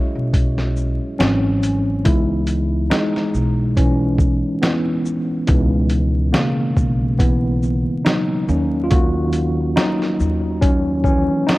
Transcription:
Already playing: F#3 G#3 C#4 E4 F#4 G#4 C#5 D#5 E5
0.15 B1
0.34 kick, closed hi-hat
0.58 snare
0.77 shaker
1.19 G#1 E3 F#3 C4 C#4, snare, closed hi-hat
1.63 closed hi-hat, shaker
2.05 C#2 E3 G#3 B3 D#4 E4, kick, closed hi-hat
2.47 closed hi-hat, shaker
2.90 G#3 D#4, snare, closed hi-hat
3.16 snare
3.34 B1, shaker
3.76 E3 C#4, kick, closed hi-hat
4.18 kick, shaker
4.62 E3 B3, snare, closed hi-hat
5.06 shaker
5.47 C#2 B2 E3 G#3 B3 D#4, kick, closed hi-hat
5.90 closed hi-hat, shaker
6.33 C#3 A#3, snare, closed hi-hat
6.77 B1, kick, shaker
7.19 E3 B3, kick, closed hi-hat
7.63 shaker
8.05 F#3 D#4, snare, closed hi-hat
8.48 D#2 D#3 A#3 C#4, shaker
8.84 F4
8.90 A#3 F#4, kick, closed hi-hat
9.33 closed hi-hat, shaker
9.76 F#3 D#4, snare, closed hi-hat
10.02 snare
10.20 D#2, shaker
10.61 F#3 C#4, kick, closed hi-hat
11.04 E3 C#4, kick, shaker
11.47 F#3 D#4, snare, closed hi-hat

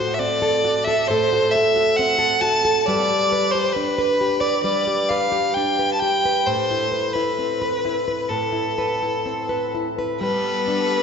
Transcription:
Already playing: A2 A4 C5
0.00 F#4
0.14 E5
0.19 C4 D5
0.42 A4
0.64 F#4
0.84 A4 E5
1.07 A2 A4 C5
1.33 F#4
1.51 E5
1.56 A4
1.76 F#4
1.96 C4 F#5
2.19 A4
2.41 F#4 A5
2.65 A4
2.86 G3 B4 D5
3.10 G4
3.32 B4
3.51 G4 C5
3.73 D4 B4
3.98 B4
4.21 G4
4.40 B4 D5
4.63 G3 B4 D5
4.87 G4
5.09 B4 F5
5.32 G4
5.54 D4 G5
5.79 B4
5.93 A5
5.99 G4 G5
6.25 B4
6.46 A2 C5
6.71 E4
6.92 B4
7.14 E4 B4
7.39 C4
7.62 B4
7.85 E4
8.08 B4
8.29 A2 A4 B4
8.53 E4
8.78 B4
9.02 E4
9.26 C4
9.49 B4
9.75 E4
9.98 B4
10.19 G3 B3 A4 B4
10.68 D4

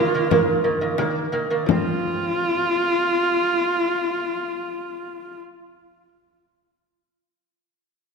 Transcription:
Already playing: F4
0.00 D#3 A#3
0.14 D#3 A#3
0.30 D#3 A#3, frame drum
0.64 D#3 A#3, frame drum
0.81 D#3 A#3
0.98 D#3 A#3, frame drum
1.32 D#3 A#3, frame drum
1.50 D#3 A#3
1.66 F3 F4, frame drum
1.71 C4

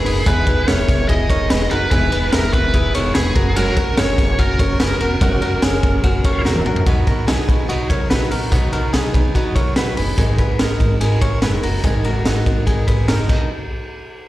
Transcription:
Already playing: G#4
0.05 F#1 G#3 B3 D#4 G#4 A#4 B4, open hi-hat, ride
0.26 E1 E3 G#3 B3 D#4 E4 G#4 B4, kick, hi-hat pedal, ride
0.47 E1 B3 D#4 G#4 B4, kick, ride
0.67 E1 G#3 B3 D#4 E4 G#4 A#4 C#5, snare, ride
0.88 E1, kick, snare, ride
1.08 E1 E4 G#4 D#5, kick, ride
1.29 E1 B3 D#4 G#4 A#4 C#5, kick, ride
1.50 E1 G#3 B3 D#4 G#4 B4, snare, ride
1.71 F#1 B3 D#4 F#4 G#4 A#4 B4, ride
1.91 E1 E3 G#3 B3 D#4 E4 G#4 B4, kick, ride
2.12 E1 B3 D#4 G#4 B4, ride
2.32 E1 G#3 B3 D#4 E4 G#4 A#4, snare, ride
2.53 E1 B4, kick, ride
2.74 E1 E4 G#4, kick, ride
2.94 E1 B3 D#4 G#4 A#4 C#5, ride
3.14 E1 G#3 B3 D#4 G#4 B4, snare, ride
3.35 F#1 C#4 F#4 A#4, kick, ride
3.56 F#3 G#3 C#4 F#4 A#4, ride
3.76 F#1 C#4 F#4 A#4, kick, ride
3.97 F#1 G#3 C#4 F#4 G#4 A#4 C#5, snare, ride
4.18 F#1, kick, snare, ride
4.39 F#1 C#4 F#4 A#4, kick, ride
4.59 F#1 C#4 F#4 A#4 C#5, kick, ride
4.79 F#1 G#3 C#4 F#4 G#4 A#4 B4, snare, ride
5.00 E1 C#4 F#4 A#4, ride
5.21 F#1 F#3 G#3 C#4 F#4 A#4, kick, ride
5.41 F#1 C#4 F#4 A#4, ride
5.62 F#1 G#3 C#4 F#4 G#4 A#4, snare, ride
5.83 F#1, kick, ride
6.04 F#1 C#4 F#4, kick, ride
6.24 F#1 C#4 F#4 A#4 C#5, kick, ride
6.44 E1 G#3 C#4 F#4 A#4, snare
6.56 high tom
6.65 A#1 C#4 F#4 A#4, mid tom
6.76 floor tom
6.86 B1 B2 D#3 F#3 B3 D#4 F#4 B4, kick, ride
7.07 B1 F#3 B3 D#4 F#4 A#4 B4, kick, ride
7.27 B1 B2 D#3 F#3 B3 D#4 G#4 B4, snare, ride
7.48 B1 F#3 B3 D#4 B4, kick, ride
7.68 B1 F#3 B3 D#4 F#4 B4, ride
7.90 B1 A#4 C#5, kick, ride
8.10 A#1 B2 D#3 F#3 B3 D#4 F#4 B4, snare, ride
8.31 A#1 F#3 B3 D#4 F#4 A#4 B4, open hi-hat, ride
8.51 B1 B2 D#3 F#3 B3 D#4 F#4 B4, kick, hi-hat pedal, ride
8.72 B1 F#3 B3 D#4 F#4 A#4 B4, ride
8.93 B1 B2 D#3 F#3 B3 D#4 G#4 B4, snare, ride
9.14 B1 F#3 B3 D#4 B4, kick, ride
9.35 B1 F#3 B3 D#4 F#4 B4, kick, ride
9.55 B1 A#4 C#5, kick, ride
9.76 A#1 B2 D#3 F#3 B3 D#4 F#4 B4, snare, ride
9.97 F#1 F#3 B3 D#4 G#4 B4, open hi-hat, ride
10.18 G#1 G#2 D#3 G#3 B3 D#4 G#4 A#4, kick, hi-hat pedal, ride
10.38 G#3 B3 D#4 G#4 A#4 B4, kick, ride
10.59 G#1 G#2 D#3 G#3 B3 D#4 A#4, snare, ride
10.79 G#1 G#3 B3 D#4 A#4, kick, ride
11.01 G#1 G#3 B3 D#4 G#4 A#4, ride
11.21 G#1 A#4 C#5, kick, ride
11.42 F#1 G#2 D#3 G#3 B3 D#4 G#4 A#4 B4, snare, ride
11.63 F#1 G#3 B3 D#4 F#4 A#4, open hi-hat, ride
11.83 G#1 G#2 D#3 G#3 B3 D#4 G#4 A#4, kick, hi-hat pedal, ride
12.04 G#1 G#3 B3 D#4 F#4 A#4, ride
12.25 G#1 G#2 D#3 G#3 B3 D#4 F#4 A#4, snare, ride
12.46 G#1 G#3 B3 D#4 A#4, kick, ride
12.66 G#1 G#3 B3 D#4 G#4 A#4, kick, ride
12.87 G#1 G#4 B4, kick, ride
13.08 F#1 G#2 D#3 G#3 B3 D#4 A#4, snare, ride
13.28 B1 B2 D#3 F#3 B3 D#4 B4, kick, crash

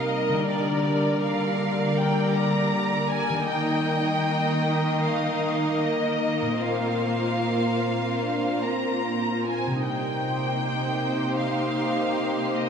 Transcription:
Already playing: C3 G3 A#3 D#4 A#4 D#5 F5
0.09 D#5
0.29 D3
0.33 G3
0.38 D4
0.42 A#4
0.47 D3 G3 D5
1.23 F5
1.98 G5
2.34 A#5
3.10 G#5
3.29 D#3
3.34 G3
3.38 A#3
3.43 A#4
3.47 D#3 A#3 D#4 D#5 G5
5.03 F5
5.81 D#5
6.42 A#2
6.46 A#3
6.51 C4
6.55 C4 A#4
6.59 A#2 F4 C5 F5
7.41 A#3
7.81 C4
8.22 D4
8.63 C4 A#5
9.04 A#3
9.46 C4 G#5
9.66 C3
9.71 G3
9.76 D#4
9.80 C3 G4 A#4 C5
9.84 A#3 D#4 G5
11.41 F5
12.55 D#5

